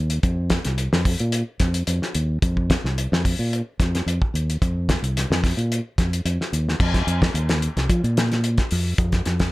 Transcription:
Already playing: fingered electric bass D#2
0.10 closed hi-hat
0.23 fingered electric bass F2, kick, closed hi-hat
0.50 kick, snare, closed hi-hat
0.65 fingered electric bass C2, snare, closed hi-hat
0.78 closed hi-hat
0.93 fingered electric bass F2, snare
1.05 kick, open hi-hat
1.20 fingered electric bass A#2, closed hi-hat
1.32 closed hi-hat
1.60 fingered electric bass F2, kick, snare, closed hi-hat
1.74 closed hi-hat
1.87 fingered electric bass F2, closed hi-hat
2.02 snare
2.15 fingered electric bass D#2, closed hi-hat
2.42 fingered electric bass F2, kick, closed hi-hat
2.57 kick
2.70 kick, snare, closed hi-hat
2.84 fingered electric bass C2, snare
2.98 closed hi-hat
3.12 fingered electric bass F2, snare
3.25 kick, open hi-hat
3.39 fingered electric bass A#2
3.53 closed hi-hat
3.80 fingered electric bass F2, kick, snare, closed hi-hat
3.95 snare, closed hi-hat
4.06 fingered electric bass F2, closed hi-hat
4.22 kick
4.34 fingered electric bass D#2, closed hi-hat
4.50 closed hi-hat
4.62 fingered electric bass F2, kick, closed hi-hat
4.89 kick, snare, closed hi-hat
5.03 fingered electric bass C2, closed hi-hat
5.17 snare, closed hi-hat
5.30 fingered electric bass F2, snare
5.44 kick, snare, open hi-hat
5.57 fingered electric bass A#2, closed hi-hat
5.72 closed hi-hat
5.98 fingered electric bass F2, kick, snare, closed hi-hat
6.13 closed hi-hat
6.25 fingered electric bass F2, closed hi-hat
6.41 snare
6.53 fingered electric bass D#2, closed hi-hat
6.69 snare
6.80 fingered electric bass F2, kick, crash
6.94 kick, snare, closed hi-hat
7.07 fingered electric bass F2, closed hi-hat
7.22 kick, snare
7.34 fingered electric bass D#2, closed hi-hat
7.49 snare, closed hi-hat
7.62 closed hi-hat
7.77 fingered electric bass C2, snare, closed hi-hat
7.89 fingered electric bass F3, kick, closed hi-hat
8.04 fingered electric bass A#2, closed hi-hat
8.17 snare, closed hi-hat
8.32 snare, closed hi-hat
8.44 closed hi-hat
8.58 kick, snare, closed hi-hat
8.71 fingered electric bass F2, open hi-hat
8.98 fingered electric bass F2, kick, closed hi-hat
9.12 kick, snare, closed hi-hat
9.26 fingered electric bass F2, snare, closed hi-hat
9.40 kick, snare, closed hi-hat

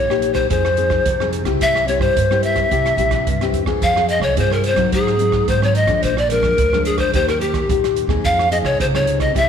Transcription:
Already playing: upright bass A#1, nylon-string guitar A#2, pan flute C#5
0.10 nylon-string guitar A#3 D#4 G4, cross-stick
0.22 closed hi-hat
0.34 pan flute C5, kick, cross-stick, closed hi-hat
0.50 upright bass F2, nylon-string guitar F3 C4 D#4 G#4, pan flute C5, kick, closed hi-hat
0.65 cross-stick
0.77 nylon-string guitar C4 D#4 G#4, closed hi-hat
0.90 kick, cross-stick
1.06 upright bass F2, nylon-string guitar C3, kick, closed hi-hat
1.20 nylon-string guitar C4 D#4 G#4, cross-stick
1.33 closed hi-hat
1.43 upright bass C#2, nylon-string guitar C4 E4 G4, kick, cross-stick, closed hi-hat
1.61 upright bass C2, nylon-string guitar C3, pan flute E5, kick, closed hi-hat
1.76 cross-stick
1.88 nylon-string guitar C4 E4 G4, pan flute C#5, closed hi-hat
1.99 upright bass G2, pan flute C5, kick, cross-stick
2.16 nylon-string guitar G2, upright bass G2, kick, closed hi-hat
2.31 nylon-string guitar C4 E4 G4, cross-stick
2.43 pan flute E5, closed hi-hat
2.56 kick, cross-stick, closed hi-hat
2.71 upright bass C2, nylon-string guitar C3 C4 E4 G4, kick, closed hi-hat
2.86 cross-stick, closed hi-hat
2.97 upright bass A#1, nylon-string guitar C4 E4 G4, closed hi-hat
3.11 kick, cross-stick, closed hi-hat
3.27 upright bass C2, nylon-string guitar G2, kick, closed hi-hat
3.41 nylon-string guitar C4 E4 G4, cross-stick, closed hi-hat
3.53 upright bass E2, closed hi-hat
3.66 nylon-string guitar C4 F4 G#4, kick, cross-stick
3.81 upright bass F2, nylon-string guitar F3, pan flute F5, kick, closed hi-hat
3.96 nylon-string guitar C4 F4 G#4, cross-stick
4.09 pan flute D#5, closed hi-hat
4.20 upright bass C2, pan flute C#5, kick, cross-stick
4.37 upright bass G2, nylon-string guitar C3 C4 F4 G#4, pan flute C5, kick, closed hi-hat
4.51 pan flute A#4, cross-stick
4.64 pan flute C5, closed hi-hat
4.76 nylon-string guitar F#3 C4 D#4, kick, cross-stick, closed hi-hat
4.92 nylon-string guitar G#2, upright bass G#2, pan flute G#4, kick, closed hi-hat
5.07 cross-stick
5.19 nylon-string guitar F#3 C4 D#4, closed hi-hat
5.32 kick, cross-stick
5.48 upright bass G#2, nylon-string guitar D#3, pan flute C5, kick, closed hi-hat
5.62 nylon-string guitar F#3 C4 D#4, pan flute C#5, cross-stick
5.75 pan flute D#5, closed hi-hat
5.85 upright bass F2, nylon-string guitar F3 G#3 D4, kick, cross-stick, closed hi-hat
6.03 upright bass A#1, nylon-string guitar A#2, pan flute C5, kick, closed hi-hat
6.17 pan flute D5, cross-stick
6.30 nylon-string guitar F3 G#3 D4, pan flute A#4, closed hi-hat
6.41 upright bass F2, kick, cross-stick
6.58 upright bass D2, nylon-string guitar F2, kick, closed hi-hat
6.73 nylon-string guitar F3 G#3 D4, cross-stick
6.85 pan flute G#4, closed hi-hat
6.98 pan flute C5, kick, cross-stick, closed hi-hat
7.14 upright bass D#2, nylon-string guitar D#3 A#3 D#4 G4, pan flute C5, kick, closed hi-hat
7.28 pan flute A#4, cross-stick, closed hi-hat
7.40 nylon-string guitar A#3 D#4 G4, pan flute G4, closed hi-hat
7.54 kick, cross-stick, closed hi-hat
7.69 upright bass D#2, nylon-string guitar A#2 A#3 D#4 G4, kick, closed hi-hat
7.84 cross-stick, closed hi-hat
7.96 closed hi-hat
8.07 upright bass D#2, nylon-string guitar C4 D#4 G#4, kick, cross-stick
8.24 upright bass F2, nylon-string guitar F3, pan flute F5, kick, closed hi-hat
8.39 cross-stick
8.51 nylon-string guitar C4 D#4 G#4, pan flute D#5, closed hi-hat
8.62 upright bass C2, pan flute C#5, kick, cross-stick
8.80 upright bass C#2, nylon-string guitar C3, pan flute C5, kick, closed hi-hat
8.94 nylon-string guitar C4 D#4 G#4, pan flute C#5, cross-stick
9.07 closed hi-hat
9.20 pan flute D#5, kick, cross-stick, closed hi-hat
9.35 upright bass C2, nylon-string guitar C3 C4 E4 G4, pan flute E5, kick, closed hi-hat

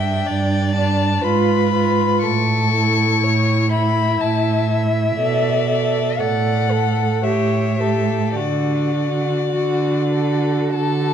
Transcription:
Already playing: cello G2, viola D4, violin E5 G5
0.27 cello G2, violin D5
0.75 viola D4, violin A5
1.22 cello G#2, viola F4, violin B4 B5
1.73 viola F4
2.23 cello A2, violin A4 C#6
2.74 viola E4
3.24 cello A2, violin C#5
3.72 viola E4, violin E5 B5
4.21 cello A2, violin A5
4.69 viola E4
5.17 cello B2, viola A4, violin D5
5.68 viola A4
6.18 cello A2, viola A4, violin D5 F#5
6.70 viola A4, violin A4
7.24 cello A2, viola G4, violin C#5 E5
7.79 viola G4, violin A4
8.35 cello D3, violin F#4 D5
8.94 viola F#4
9.51 cello D3, violin F#4
10.12 viola F#4, violin A4
10.73 cello D3, violin A4 A5

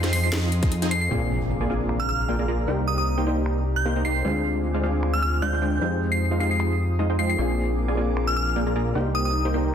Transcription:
Already playing: analog synth bass F2, analog synth pad G#4 D#5 F5 C6
0.04 supersaw synth F3 C4 D#4 G#4 C5, snare, closed hi-hat
0.13 supersaw synth F3 C4 D#4 G#4 C5, synth bell C7, open hi-hat
0.24 synth bell C7
0.33 snare, closed hi-hat
0.52 closed hi-hat
0.63 supersaw synth F3 C4 D#4 G#4 D#5, kick, closed hi-hat
0.72 closed hi-hat
0.82 supersaw synth F3 C4 D#4 G#4 C5, closed hi-hat
0.91 synth bell C7, closed hi-hat
1.01 synth bell C7
1.09 analog synth bass A#1, supersaw synth A#3 F4 G#4 D5 G#5, felt piano C4 D4 F4, analog synth pad G#4 F5 A#5 D6, impact
1.13 felt piano G#4
1.61 supersaw synth A#3 F4 G#4 D5 G#5
1.68 supersaw synth A#3 F4 G#4 D5 G#5, felt piano C4 D4 F4 G#4
1.89 finger snap
2.00 synth bell F6
2.09 synth bell F6
2.29 supersaw synth A#3 F4 G#4 D5 G5
2.39 supersaw synth A#3 F4 G#4 D5 A#5
2.48 supersaw synth A#3 F4 G#4 D5 A#5
2.66 analog synth bass C2, felt piano A#3 D#4 G4 D5, supersaw synth A#3 D#4 G4 C5 G5, analog synth pad G4 C5
2.88 synth bell D#6
2.98 synth bell D#6
3.18 supersaw synth A#3 D#4 G4 C5 G5
3.25 felt piano A#3 D#4 G4 D5, supersaw synth A#3 D#4 G4 C5 G5
3.46 finger snap
3.76 synth bell G6
3.85 supersaw synth A#3 D#4 G4 C5 F5
3.96 supersaw synth A#3 D#4 G4 C5 A#5
4.05 supersaw synth A#3 D#4 G4 C5 A#5, synth bell C7
4.23 analog synth bass D2, supersaw synth G#3 D4 F4 C5 F5, felt piano C4 D4 F4 G#4, analog synth pad F4 G#5 D6
4.74 supersaw synth G#3 D4 F4 C5 F5
4.81 supersaw synth G#3 D4 F4 C5 F5, felt piano C4 D4 F4 G#4
5.03 finger snap
5.13 synth bell F6
5.22 synth bell F6
5.42 supersaw synth G#3 D4 F4 C5 D5, synth bell G6
5.53 supersaw synth G#3 D4 F4 C5 G5
5.62 supersaw synth G#3 D4 F4 C5 G5
5.79 analog synth bass F2, supersaw synth G#3 D#4 F4 C5 F5, felt piano C4 D#4 G4 G#4, analog synth pad F4 D#6
6.12 synth bell C7
6.31 supersaw synth G#3 D#4 F4 C5 F5
6.38 supersaw synth G#3 D#4 F4 C5 F5, felt piano C4 D#4 G4, synth bell C7
6.42 felt piano G#4
6.51 synth bell C7
6.60 finger snap
6.99 supersaw synth G#3 D#4 F4 C5 D#5
7.10 supersaw synth G#3 D#4 F4 C5 G5
7.19 supersaw synth G#3 D#4 F4 C5 G5, synth bell C7
7.29 synth bell C7
7.36 analog synth bass A#1, supersaw synth A#3 F4 G#4 D5 G#5, felt piano C4 D4 F4 G#4, analog synth pad A#4 G#5 D6
7.88 supersaw synth A#3 F4 G#4 D5 G#5
7.95 supersaw synth A#3 F4 G#4 D5 G#5, felt piano C4 D4 F4
7.99 felt piano G#4
8.17 finger snap
8.27 synth bell F6
8.36 synth bell F6
8.56 supersaw synth A#3 F4 G#4 D5 G5
8.67 supersaw synth A#3 F4 G#4 D5 A#5
8.76 supersaw synth A#3 F4 G#4 D5 A#5
8.93 analog synth bass C2, felt piano A#3 D#4 D5, supersaw synth A#3 D#4 G4 C5 G5, analog synth pad G4 C5 A#5
8.97 felt piano G4
9.15 synth bell D#6
9.25 synth bell D#6
9.45 supersaw synth A#3 D#4 G4 C5 G5
9.52 felt piano A#3 D#4 G4 D5, supersaw synth A#3 D#4 G4 C5 G5

